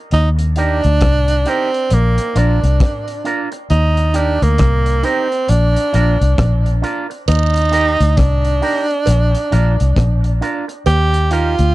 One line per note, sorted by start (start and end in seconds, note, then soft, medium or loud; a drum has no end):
0.11 0.81 D#2 loud
0.11 0.29 D#4 loud
0.11 closed hi-hat medium
0.39 closed hi-hat medium
0.56 1.50 D4 loud
0.56 0.79 D#4 medium
0.56 0.80 G4 medium
0.56 0.80 A#4 medium
0.56 closed hi-hat medium
0.84 1.01 D2 loud
0.84 closed hi-hat medium
1.01 1.44 C2 medium
1.01 kick loud
1.01 cross-stick loud
1.01 closed hi-hat loud
1.28 closed hi-hat medium
1.46 1.95 C4 loud
1.46 1.69 D#4 medium
1.46 1.69 G4 medium
1.46 1.70 A#4 medium
1.46 closed hi-hat medium
1.74 closed hi-hat soft
1.90 2.17 A#1 medium
1.90 2.39 A#3 loud
1.90 closed hi-hat medium
2.18 closed hi-hat medium
2.35 2.62 A#1 medium
2.35 2.58 D4 medium
2.35 3.26 D4 medium
2.35 2.59 F4 medium
2.35 2.59 A#4 medium
2.35 closed hi-hat medium
2.63 2.80 C2 medium
2.63 closed hi-hat medium
2.80 kick loud
2.80 cross-stick loud
2.80 closed hi-hat medium
3.08 closed hi-hat soft
3.24 3.48 D4 medium
3.24 3.48 F4 medium
3.24 3.49 A#4 medium
3.24 closed hi-hat medium
3.52 muted clean electric guitar stroke soft
3.52 closed hi-hat soft
3.70 4.39 D#2 loud
3.70 4.17 D#4 loud
3.70 closed hi-hat medium
3.97 closed hi-hat medium
4.14 4.44 D4 loud
4.14 4.37 D#4 medium
4.14 4.38 G4 medium
4.14 4.38 A#4 medium
4.14 closed hi-hat medium
4.42 4.59 D2 medium
4.42 5.06 A#3 medium
4.42 closed hi-hat soft
4.58 5.02 C2 medium
4.58 kick loud
4.58 cross-stick loud
4.58 closed hi-hat loud
4.86 closed hi-hat medium
5.03 5.50 C4 loud
5.03 5.27 D#4 medium
5.03 5.27 G4 medium
5.03 5.27 A#4 medium
5.03 closed hi-hat medium
5.32 closed hi-hat soft
5.48 5.75 A#1 medium
5.48 6.83 D4 loud
5.48 closed hi-hat loud
5.76 closed hi-hat medium
5.93 6.20 A#1 medium
5.93 6.16 D4 medium
5.93 6.17 F4 medium
5.93 6.17 A#4 medium
5.93 closed hi-hat medium
6.21 6.38 C2 medium
6.21 closed hi-hat soft
6.38 6.81 A#1 medium
6.38 kick loud
6.38 cross-stick loud
6.38 closed hi-hat medium
6.66 closed hi-hat soft
6.82 7.05 D4 medium
6.82 7.06 F4 medium
6.82 7.07 A#4 medium
6.82 closed hi-hat medium
7.10 muted clean electric guitar stroke soft
7.10 closed hi-hat soft
7.28 7.97 D#2 loud
7.28 8.19 D#4 loud
7.28 closed hi-hat medium
7.28 cowbell medium
7.28 vibraslap medium
7.56 closed hi-hat medium
7.71 7.95 D#4 medium
7.71 7.95 G4 medium
7.71 7.96 A#4 medium
7.71 closed hi-hat medium
8.00 8.17 D2 medium
8.00 closed hi-hat medium
8.17 8.60 C2 medium
8.17 10.41 D4 loud
8.17 kick loud
8.17 cross-stick loud
8.17 closed hi-hat loud
8.45 closed hi-hat medium
8.61 8.85 D#4 medium
8.61 8.85 G4 medium
8.61 8.86 A#4 medium
8.61 open hi-hat medium
8.91 closed hi-hat soft
9.06 9.33 A#1 loud
9.06 closed hi-hat loud
9.06 cowbell medium
9.35 closed hi-hat medium
9.51 9.78 A#1 medium
9.51 9.75 D4 medium
9.51 9.75 F4 medium
9.51 9.75 A#4 medium
9.51 closed hi-hat medium
9.80 9.96 C2 medium
9.80 closed hi-hat medium
9.96 10.40 A#1 medium
9.96 kick loud
9.96 cross-stick loud
9.96 closed hi-hat medium
10.24 closed hi-hat soft
10.41 10.64 D4 medium
10.41 10.65 F4 medium
10.41 10.65 A#4 medium
10.41 closed hi-hat medium
10.68 muted clean electric guitar stroke medium
10.68 closed hi-hat soft
10.86 11.55 D#2 loud
10.86 11.33 G4 loud
10.86 closed hi-hat medium
10.86 cowbell medium
11.14 closed hi-hat soft
11.31 11.54 D#4 medium
11.31 11.75 F4 loud
11.31 11.54 G4 medium
11.31 11.55 A#4 medium
11.31 closed hi-hat medium
11.59 11.75 D2 medium
11.59 closed hi-hat medium